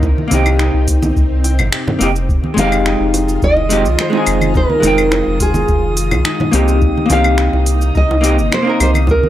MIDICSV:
0, 0, Header, 1, 8, 480
1, 0, Start_track
1, 0, Key_signature, -4, "minor"
1, 0, Tempo, 566038
1, 22, Time_signature, 4, 2, 24, 8
1, 7879, End_track
2, 0, Start_track
2, 0, Title_t, "Synth texture"
2, 0, Program_c, 0, 99
2, 1945, Note_on_c, 0, 87, 87
2, 7879, Note_off_c, 0, 87, 0
2, 7879, End_track
3, 0, Start_track
3, 0, Title_t, "Nylon-string guitar"
3, 0, Program_c, 1, 24
3, 2198, Note_on_c, 1, 77, 121
3, 2913, Note_off_c, 1, 77, 0
3, 2916, Note_on_c, 1, 75, 107
3, 3395, Note_on_c, 1, 72, 98
3, 3403, Note_off_c, 1, 75, 0
3, 3835, Note_off_c, 1, 72, 0
3, 3875, Note_on_c, 1, 70, 90
3, 4596, Note_off_c, 1, 70, 0
3, 4599, Note_on_c, 1, 68, 81
3, 5038, Note_off_c, 1, 68, 0
3, 6041, Note_on_c, 1, 77, 120
3, 6757, Note_off_c, 1, 77, 0
3, 6760, Note_on_c, 1, 75, 106
3, 7239, Note_off_c, 1, 75, 0
3, 7243, Note_on_c, 1, 72, 90
3, 7475, Note_off_c, 1, 72, 0
3, 7485, Note_on_c, 1, 72, 90
3, 7547, Note_off_c, 1, 72, 0
3, 7724, Note_on_c, 1, 70, 92
3, 7879, Note_off_c, 1, 70, 0
3, 7879, End_track
4, 0, Start_track
4, 0, Title_t, "Harp"
4, 0, Program_c, 2, 46
4, 0, Note_on_c, 2, 63, 95
4, 0, Note_on_c, 2, 70, 80
4, 496, Note_off_c, 2, 63, 0
4, 500, Note_on_c, 2, 63, 101
4, 1220, Note_on_c, 2, 79, 80
4, 1461, Note_on_c, 2, 67, 76
4, 1577, Note_off_c, 2, 70, 0
4, 2417, Note_off_c, 2, 63, 0
4, 2421, Note_on_c, 2, 63, 103
4, 2537, Note_off_c, 2, 79, 0
4, 3138, Note_on_c, 2, 65, 77
4, 3457, Note_off_c, 2, 67, 0
4, 3855, Note_off_c, 2, 63, 0
4, 3859, Note_on_c, 2, 63, 103
4, 4579, Note_off_c, 2, 65, 0
4, 4582, Note_on_c, 2, 65, 82
4, 5296, Note_off_c, 2, 63, 0
4, 5300, Note_on_c, 2, 63, 100
4, 6021, Note_on_c, 2, 67, 73
4, 6721, Note_off_c, 2, 65, 0
4, 6737, Note_off_c, 2, 63, 0
4, 6740, Note_on_c, 2, 63, 108
4, 7456, Note_off_c, 2, 67, 0
4, 7459, Note_on_c, 2, 67, 83
4, 7879, Note_off_c, 2, 63, 0
4, 7879, Note_off_c, 2, 67, 0
4, 7879, End_track
5, 0, Start_track
5, 0, Title_t, "Hollow-body jazz guitar"
5, 0, Program_c, 3, 26
5, 0, Note_on_c, 3, 58, 78
5, 0, Note_on_c, 3, 60, 68
5, 0, Note_on_c, 3, 63, 69
5, 0, Note_on_c, 3, 70, 89
5, 219, Note_off_c, 3, 58, 0
5, 231, Note_off_c, 3, 60, 0
5, 234, Note_on_c, 3, 58, 86
5, 241, Note_off_c, 3, 63, 0
5, 250, Note_off_c, 3, 70, 0
5, 251, Note_on_c, 3, 60, 73
5, 275, Note_on_c, 3, 63, 72
5, 292, Note_on_c, 3, 67, 88
5, 1180, Note_off_c, 3, 58, 0
5, 1189, Note_off_c, 3, 60, 0
5, 1201, Note_off_c, 3, 63, 0
5, 1209, Note_off_c, 3, 67, 0
5, 1685, Note_on_c, 3, 58, 84
5, 1698, Note_on_c, 3, 60, 70
5, 1705, Note_on_c, 3, 63, 70
5, 1718, Note_on_c, 3, 67, 89
5, 1760, Note_off_c, 3, 58, 0
5, 1767, Note_off_c, 3, 60, 0
5, 1771, Note_off_c, 3, 63, 0
5, 1777, Note_off_c, 3, 67, 0
5, 2154, Note_on_c, 3, 56, 100
5, 2175, Note_on_c, 3, 60, 89
5, 2193, Note_on_c, 3, 63, 88
5, 2214, Note_on_c, 3, 67, 109
5, 3100, Note_off_c, 3, 56, 0
5, 3111, Note_off_c, 3, 60, 0
5, 3120, Note_off_c, 3, 63, 0
5, 3130, Note_off_c, 3, 67, 0
5, 3131, Note_on_c, 3, 56, 94
5, 3141, Note_on_c, 3, 60, 83
5, 3150, Note_on_c, 3, 63, 81
5, 3160, Note_on_c, 3, 67, 102
5, 3243, Note_off_c, 3, 56, 0
5, 3249, Note_off_c, 3, 60, 0
5, 3253, Note_off_c, 3, 63, 0
5, 3258, Note_off_c, 3, 67, 0
5, 3475, Note_on_c, 3, 56, 84
5, 3496, Note_on_c, 3, 60, 75
5, 3517, Note_on_c, 3, 63, 77
5, 3536, Note_on_c, 3, 68, 83
5, 4059, Note_off_c, 3, 56, 0
5, 4068, Note_off_c, 3, 60, 0
5, 4072, Note_on_c, 3, 56, 83
5, 4080, Note_off_c, 3, 63, 0
5, 4089, Note_off_c, 3, 68, 0
5, 4090, Note_on_c, 3, 60, 76
5, 4112, Note_on_c, 3, 63, 81
5, 4133, Note_on_c, 3, 79, 90
5, 5019, Note_off_c, 3, 56, 0
5, 5028, Note_off_c, 3, 60, 0
5, 5039, Note_off_c, 3, 63, 0
5, 5049, Note_off_c, 3, 79, 0
5, 5524, Note_on_c, 3, 58, 96
5, 5534, Note_on_c, 3, 60, 90
5, 5544, Note_on_c, 3, 63, 88
5, 5553, Note_on_c, 3, 67, 104
5, 5973, Note_off_c, 3, 58, 0
5, 5984, Note_on_c, 3, 58, 97
5, 5990, Note_off_c, 3, 60, 0
5, 5995, Note_off_c, 3, 63, 0
5, 6000, Note_off_c, 3, 67, 0
5, 6009, Note_on_c, 3, 60, 88
5, 6029, Note_on_c, 3, 63, 87
5, 6048, Note_on_c, 3, 67, 109
5, 6935, Note_off_c, 3, 58, 0
5, 6947, Note_off_c, 3, 60, 0
5, 6958, Note_off_c, 3, 63, 0
5, 6960, Note_on_c, 3, 58, 97
5, 6967, Note_off_c, 3, 67, 0
5, 6969, Note_on_c, 3, 60, 82
5, 6979, Note_on_c, 3, 63, 90
5, 6989, Note_on_c, 3, 67, 100
5, 7078, Note_off_c, 3, 58, 0
5, 7083, Note_off_c, 3, 60, 0
5, 7087, Note_off_c, 3, 63, 0
5, 7093, Note_off_c, 3, 67, 0
5, 7313, Note_on_c, 3, 58, 77
5, 7332, Note_on_c, 3, 60, 77
5, 7354, Note_on_c, 3, 63, 71
5, 7372, Note_on_c, 3, 70, 87
5, 7879, Note_off_c, 3, 58, 0
5, 7879, Note_off_c, 3, 60, 0
5, 7879, Note_off_c, 3, 63, 0
5, 7879, Note_off_c, 3, 70, 0
5, 7879, End_track
6, 0, Start_track
6, 0, Title_t, "String machine"
6, 0, Program_c, 4, 50
6, 0, Note_on_c, 4, 48, 90
6, 0, Note_on_c, 4, 63, 91
6, 26, Note_on_c, 4, 60, 75
6, 1907, Note_off_c, 4, 63, 0
6, 1909, Note_off_c, 4, 48, 0
6, 1925, Note_off_c, 4, 60, 0
6, 1935, Note_on_c, 4, 56, 76
6, 1937, Note_on_c, 4, 65, 94
6, 1942, Note_on_c, 4, 51, 84
6, 5745, Note_off_c, 4, 56, 0
6, 5746, Note_off_c, 4, 65, 0
6, 5748, Note_off_c, 4, 51, 0
6, 5788, Note_on_c, 4, 48, 82
6, 5788, Note_on_c, 4, 58, 77
6, 5789, Note_on_c, 4, 63, 94
6, 7879, Note_off_c, 4, 48, 0
6, 7879, Note_off_c, 4, 58, 0
6, 7879, Note_off_c, 4, 63, 0
6, 7879, End_track
7, 0, Start_track
7, 0, Title_t, "Analog synth bass"
7, 0, Program_c, 5, 38
7, 0, Note_on_c, 5, 36, 97
7, 112, Note_off_c, 5, 36, 0
7, 270, Note_on_c, 5, 36, 97
7, 593, Note_off_c, 5, 36, 0
7, 628, Note_on_c, 5, 36, 84
7, 948, Note_off_c, 5, 36, 0
7, 987, Note_on_c, 5, 36, 99
7, 1347, Note_on_c, 5, 31, 84
7, 1360, Note_off_c, 5, 36, 0
7, 1441, Note_off_c, 5, 31, 0
7, 1704, Note_on_c, 5, 29, 93
7, 2030, Note_off_c, 5, 29, 0
7, 2181, Note_on_c, 5, 29, 99
7, 2508, Note_off_c, 5, 29, 0
7, 2548, Note_on_c, 5, 29, 80
7, 2869, Note_off_c, 5, 29, 0
7, 2905, Note_on_c, 5, 29, 100
7, 3269, Note_on_c, 5, 36, 83
7, 3282, Note_off_c, 5, 29, 0
7, 3362, Note_off_c, 5, 36, 0
7, 3623, Note_on_c, 5, 29, 97
7, 3950, Note_off_c, 5, 29, 0
7, 4103, Note_on_c, 5, 29, 105
7, 4430, Note_off_c, 5, 29, 0
7, 4473, Note_on_c, 5, 29, 81
7, 4791, Note_off_c, 5, 29, 0
7, 4826, Note_on_c, 5, 29, 103
7, 5191, Note_on_c, 5, 36, 81
7, 5204, Note_off_c, 5, 29, 0
7, 5283, Note_off_c, 5, 36, 0
7, 5543, Note_on_c, 5, 36, 94
7, 5870, Note_off_c, 5, 36, 0
7, 6026, Note_on_c, 5, 36, 98
7, 6351, Note_off_c, 5, 36, 0
7, 6389, Note_on_c, 5, 36, 81
7, 6709, Note_off_c, 5, 36, 0
7, 6745, Note_on_c, 5, 36, 94
7, 7111, Note_on_c, 5, 31, 84
7, 7124, Note_off_c, 5, 36, 0
7, 7203, Note_off_c, 5, 31, 0
7, 7466, Note_on_c, 5, 36, 95
7, 7791, Note_off_c, 5, 36, 0
7, 7879, End_track
8, 0, Start_track
8, 0, Title_t, "Drums"
8, 23, Note_on_c, 9, 36, 127
8, 24, Note_on_c, 9, 60, 64
8, 26, Note_on_c, 9, 82, 34
8, 108, Note_off_c, 9, 36, 0
8, 109, Note_off_c, 9, 60, 0
8, 110, Note_off_c, 9, 82, 0
8, 154, Note_on_c, 9, 63, 62
8, 239, Note_off_c, 9, 63, 0
8, 265, Note_on_c, 9, 46, 81
8, 265, Note_on_c, 9, 63, 94
8, 265, Note_on_c, 9, 82, 79
8, 349, Note_off_c, 9, 46, 0
8, 350, Note_off_c, 9, 63, 0
8, 350, Note_off_c, 9, 82, 0
8, 389, Note_on_c, 9, 75, 81
8, 389, Note_on_c, 9, 82, 50
8, 396, Note_on_c, 9, 60, 51
8, 473, Note_off_c, 9, 75, 0
8, 474, Note_off_c, 9, 82, 0
8, 481, Note_off_c, 9, 60, 0
8, 504, Note_on_c, 9, 26, 96
8, 504, Note_on_c, 9, 82, 36
8, 589, Note_off_c, 9, 26, 0
8, 589, Note_off_c, 9, 82, 0
8, 744, Note_on_c, 9, 46, 89
8, 745, Note_on_c, 9, 36, 101
8, 745, Note_on_c, 9, 82, 87
8, 829, Note_off_c, 9, 36, 0
8, 829, Note_off_c, 9, 46, 0
8, 829, Note_off_c, 9, 82, 0
8, 869, Note_on_c, 9, 60, 70
8, 870, Note_on_c, 9, 82, 49
8, 871, Note_on_c, 9, 63, 81
8, 954, Note_off_c, 9, 60, 0
8, 955, Note_off_c, 9, 82, 0
8, 956, Note_off_c, 9, 63, 0
8, 985, Note_on_c, 9, 36, 115
8, 990, Note_on_c, 9, 82, 35
8, 1069, Note_off_c, 9, 36, 0
8, 1074, Note_off_c, 9, 82, 0
8, 1224, Note_on_c, 9, 46, 87
8, 1225, Note_on_c, 9, 82, 82
8, 1232, Note_on_c, 9, 60, 47
8, 1309, Note_off_c, 9, 46, 0
8, 1310, Note_off_c, 9, 82, 0
8, 1317, Note_off_c, 9, 60, 0
8, 1347, Note_on_c, 9, 75, 81
8, 1348, Note_on_c, 9, 82, 49
8, 1352, Note_on_c, 9, 64, 72
8, 1432, Note_off_c, 9, 75, 0
8, 1433, Note_off_c, 9, 82, 0
8, 1437, Note_off_c, 9, 64, 0
8, 1463, Note_on_c, 9, 26, 105
8, 1463, Note_on_c, 9, 82, 37
8, 1548, Note_off_c, 9, 26, 0
8, 1548, Note_off_c, 9, 82, 0
8, 1591, Note_on_c, 9, 64, 99
8, 1593, Note_on_c, 9, 63, 92
8, 1675, Note_off_c, 9, 64, 0
8, 1678, Note_off_c, 9, 63, 0
8, 1703, Note_on_c, 9, 46, 86
8, 1703, Note_on_c, 9, 82, 85
8, 1711, Note_on_c, 9, 60, 75
8, 1788, Note_off_c, 9, 46, 0
8, 1788, Note_off_c, 9, 82, 0
8, 1796, Note_off_c, 9, 60, 0
8, 1829, Note_on_c, 9, 82, 45
8, 1914, Note_off_c, 9, 82, 0
8, 1943, Note_on_c, 9, 36, 116
8, 1948, Note_on_c, 9, 82, 32
8, 2028, Note_off_c, 9, 36, 0
8, 2033, Note_off_c, 9, 82, 0
8, 2066, Note_on_c, 9, 63, 63
8, 2151, Note_off_c, 9, 63, 0
8, 2179, Note_on_c, 9, 63, 92
8, 2183, Note_on_c, 9, 60, 51
8, 2186, Note_on_c, 9, 46, 85
8, 2187, Note_on_c, 9, 82, 80
8, 2263, Note_off_c, 9, 63, 0
8, 2268, Note_off_c, 9, 60, 0
8, 2271, Note_off_c, 9, 46, 0
8, 2271, Note_off_c, 9, 82, 0
8, 2308, Note_on_c, 9, 75, 81
8, 2309, Note_on_c, 9, 82, 47
8, 2393, Note_off_c, 9, 75, 0
8, 2393, Note_off_c, 9, 82, 0
8, 2424, Note_on_c, 9, 26, 96
8, 2424, Note_on_c, 9, 82, 35
8, 2509, Note_off_c, 9, 26, 0
8, 2509, Note_off_c, 9, 82, 0
8, 2662, Note_on_c, 9, 46, 94
8, 2662, Note_on_c, 9, 82, 79
8, 2663, Note_on_c, 9, 60, 74
8, 2747, Note_off_c, 9, 46, 0
8, 2747, Note_off_c, 9, 60, 0
8, 2747, Note_off_c, 9, 82, 0
8, 2787, Note_on_c, 9, 82, 45
8, 2871, Note_off_c, 9, 82, 0
8, 2903, Note_on_c, 9, 36, 107
8, 2903, Note_on_c, 9, 82, 36
8, 2987, Note_off_c, 9, 36, 0
8, 2988, Note_off_c, 9, 82, 0
8, 3025, Note_on_c, 9, 60, 53
8, 3109, Note_off_c, 9, 60, 0
8, 3140, Note_on_c, 9, 46, 91
8, 3141, Note_on_c, 9, 82, 85
8, 3225, Note_off_c, 9, 46, 0
8, 3226, Note_off_c, 9, 82, 0
8, 3268, Note_on_c, 9, 82, 44
8, 3353, Note_off_c, 9, 82, 0
8, 3381, Note_on_c, 9, 26, 93
8, 3381, Note_on_c, 9, 82, 33
8, 3466, Note_off_c, 9, 26, 0
8, 3466, Note_off_c, 9, 82, 0
8, 3502, Note_on_c, 9, 60, 76
8, 3587, Note_off_c, 9, 60, 0
8, 3617, Note_on_c, 9, 46, 96
8, 3617, Note_on_c, 9, 75, 83
8, 3618, Note_on_c, 9, 82, 84
8, 3702, Note_off_c, 9, 46, 0
8, 3702, Note_off_c, 9, 75, 0
8, 3703, Note_off_c, 9, 82, 0
8, 3741, Note_on_c, 9, 63, 62
8, 3744, Note_on_c, 9, 75, 61
8, 3745, Note_on_c, 9, 82, 46
8, 3826, Note_off_c, 9, 63, 0
8, 3829, Note_off_c, 9, 75, 0
8, 3830, Note_off_c, 9, 82, 0
8, 3852, Note_on_c, 9, 60, 46
8, 3860, Note_on_c, 9, 36, 117
8, 3860, Note_on_c, 9, 82, 33
8, 3937, Note_off_c, 9, 60, 0
8, 3945, Note_off_c, 9, 36, 0
8, 3945, Note_off_c, 9, 82, 0
8, 3982, Note_on_c, 9, 63, 60
8, 4067, Note_off_c, 9, 63, 0
8, 4091, Note_on_c, 9, 63, 90
8, 4098, Note_on_c, 9, 46, 93
8, 4099, Note_on_c, 9, 82, 77
8, 4175, Note_off_c, 9, 63, 0
8, 4183, Note_off_c, 9, 46, 0
8, 4184, Note_off_c, 9, 82, 0
8, 4224, Note_on_c, 9, 75, 90
8, 4224, Note_on_c, 9, 82, 45
8, 4308, Note_off_c, 9, 75, 0
8, 4309, Note_off_c, 9, 82, 0
8, 4337, Note_on_c, 9, 60, 85
8, 4340, Note_on_c, 9, 26, 93
8, 4340, Note_on_c, 9, 82, 31
8, 4422, Note_off_c, 9, 60, 0
8, 4424, Note_off_c, 9, 26, 0
8, 4425, Note_off_c, 9, 82, 0
8, 4581, Note_on_c, 9, 46, 98
8, 4582, Note_on_c, 9, 36, 101
8, 4582, Note_on_c, 9, 82, 75
8, 4666, Note_off_c, 9, 46, 0
8, 4666, Note_off_c, 9, 82, 0
8, 4667, Note_off_c, 9, 36, 0
8, 4698, Note_on_c, 9, 60, 56
8, 4699, Note_on_c, 9, 63, 95
8, 4702, Note_on_c, 9, 82, 46
8, 4783, Note_off_c, 9, 60, 0
8, 4784, Note_off_c, 9, 63, 0
8, 4787, Note_off_c, 9, 82, 0
8, 4820, Note_on_c, 9, 82, 33
8, 4822, Note_on_c, 9, 36, 106
8, 4905, Note_off_c, 9, 82, 0
8, 4907, Note_off_c, 9, 36, 0
8, 5061, Note_on_c, 9, 46, 93
8, 5062, Note_on_c, 9, 82, 84
8, 5146, Note_off_c, 9, 46, 0
8, 5147, Note_off_c, 9, 82, 0
8, 5183, Note_on_c, 9, 64, 76
8, 5185, Note_on_c, 9, 60, 81
8, 5185, Note_on_c, 9, 75, 84
8, 5185, Note_on_c, 9, 82, 44
8, 5268, Note_off_c, 9, 64, 0
8, 5270, Note_off_c, 9, 60, 0
8, 5270, Note_off_c, 9, 75, 0
8, 5270, Note_off_c, 9, 82, 0
8, 5300, Note_on_c, 9, 26, 92
8, 5301, Note_on_c, 9, 82, 33
8, 5385, Note_off_c, 9, 26, 0
8, 5386, Note_off_c, 9, 82, 0
8, 5428, Note_on_c, 9, 63, 88
8, 5435, Note_on_c, 9, 64, 87
8, 5513, Note_off_c, 9, 63, 0
8, 5519, Note_off_c, 9, 64, 0
8, 5538, Note_on_c, 9, 60, 53
8, 5539, Note_on_c, 9, 46, 95
8, 5540, Note_on_c, 9, 82, 80
8, 5622, Note_off_c, 9, 60, 0
8, 5624, Note_off_c, 9, 46, 0
8, 5624, Note_off_c, 9, 82, 0
8, 5665, Note_on_c, 9, 82, 45
8, 5750, Note_off_c, 9, 82, 0
8, 5781, Note_on_c, 9, 82, 29
8, 5783, Note_on_c, 9, 36, 120
8, 5866, Note_off_c, 9, 82, 0
8, 5868, Note_off_c, 9, 36, 0
8, 5915, Note_on_c, 9, 63, 56
8, 6000, Note_off_c, 9, 63, 0
8, 6019, Note_on_c, 9, 46, 94
8, 6020, Note_on_c, 9, 63, 89
8, 6020, Note_on_c, 9, 82, 77
8, 6024, Note_on_c, 9, 60, 78
8, 6104, Note_off_c, 9, 46, 0
8, 6104, Note_off_c, 9, 82, 0
8, 6105, Note_off_c, 9, 63, 0
8, 6109, Note_off_c, 9, 60, 0
8, 6143, Note_on_c, 9, 75, 91
8, 6143, Note_on_c, 9, 82, 44
8, 6228, Note_off_c, 9, 75, 0
8, 6228, Note_off_c, 9, 82, 0
8, 6257, Note_on_c, 9, 26, 98
8, 6257, Note_on_c, 9, 82, 33
8, 6342, Note_off_c, 9, 26, 0
8, 6342, Note_off_c, 9, 82, 0
8, 6389, Note_on_c, 9, 60, 51
8, 6473, Note_off_c, 9, 60, 0
8, 6499, Note_on_c, 9, 46, 98
8, 6500, Note_on_c, 9, 82, 79
8, 6584, Note_off_c, 9, 46, 0
8, 6584, Note_off_c, 9, 82, 0
8, 6626, Note_on_c, 9, 82, 43
8, 6711, Note_off_c, 9, 82, 0
8, 6743, Note_on_c, 9, 36, 108
8, 6744, Note_on_c, 9, 82, 32
8, 6828, Note_off_c, 9, 36, 0
8, 6829, Note_off_c, 9, 82, 0
8, 6876, Note_on_c, 9, 60, 90
8, 6961, Note_off_c, 9, 60, 0
8, 6985, Note_on_c, 9, 46, 101
8, 6986, Note_on_c, 9, 82, 78
8, 7070, Note_off_c, 9, 46, 0
8, 7071, Note_off_c, 9, 82, 0
8, 7111, Note_on_c, 9, 82, 44
8, 7196, Note_off_c, 9, 82, 0
8, 7222, Note_on_c, 9, 60, 54
8, 7229, Note_on_c, 9, 26, 93
8, 7229, Note_on_c, 9, 82, 33
8, 7307, Note_off_c, 9, 60, 0
8, 7313, Note_off_c, 9, 26, 0
8, 7314, Note_off_c, 9, 82, 0
8, 7466, Note_on_c, 9, 46, 98
8, 7466, Note_on_c, 9, 75, 88
8, 7466, Note_on_c, 9, 82, 82
8, 7551, Note_off_c, 9, 46, 0
8, 7551, Note_off_c, 9, 75, 0
8, 7551, Note_off_c, 9, 82, 0
8, 7583, Note_on_c, 9, 63, 55
8, 7590, Note_on_c, 9, 75, 66
8, 7591, Note_on_c, 9, 82, 43
8, 7668, Note_off_c, 9, 63, 0
8, 7675, Note_off_c, 9, 75, 0
8, 7676, Note_off_c, 9, 82, 0
8, 7693, Note_on_c, 9, 60, 78
8, 7704, Note_on_c, 9, 36, 120
8, 7706, Note_on_c, 9, 82, 31
8, 7778, Note_off_c, 9, 60, 0
8, 7789, Note_off_c, 9, 36, 0
8, 7791, Note_off_c, 9, 82, 0
8, 7831, Note_on_c, 9, 63, 62
8, 7879, Note_off_c, 9, 63, 0
8, 7879, End_track
0, 0, End_of_file